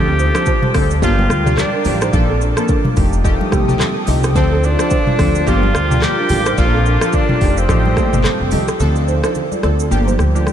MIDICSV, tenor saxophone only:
0, 0, Header, 1, 2, 480
1, 0, Start_track
1, 0, Tempo, 555556
1, 1844, Time_signature, 4, 2, 24, 8
1, 9094, End_track
2, 0, Start_track
2, 0, Title_t, "Tenor saxophone"
2, 0, Program_c, 0, 66
2, 0, Note_on_c, 0, 67, 121
2, 650, Note_off_c, 0, 67, 0
2, 897, Note_on_c, 0, 65, 114
2, 1338, Note_off_c, 0, 65, 0
2, 1377, Note_on_c, 0, 62, 93
2, 1594, Note_off_c, 0, 62, 0
2, 1615, Note_on_c, 0, 62, 86
2, 2056, Note_off_c, 0, 62, 0
2, 3776, Note_on_c, 0, 60, 91
2, 4019, Note_on_c, 0, 62, 101
2, 4032, Note_off_c, 0, 60, 0
2, 4737, Note_on_c, 0, 65, 110
2, 4750, Note_off_c, 0, 62, 0
2, 5217, Note_on_c, 0, 67, 112
2, 5230, Note_off_c, 0, 65, 0
2, 5690, Note_off_c, 0, 67, 0
2, 5695, Note_on_c, 0, 65, 105
2, 6176, Note_on_c, 0, 62, 100
2, 6189, Note_off_c, 0, 65, 0
2, 6555, Note_on_c, 0, 60, 89
2, 6568, Note_off_c, 0, 62, 0
2, 7370, Note_off_c, 0, 60, 0
2, 9094, End_track
0, 0, End_of_file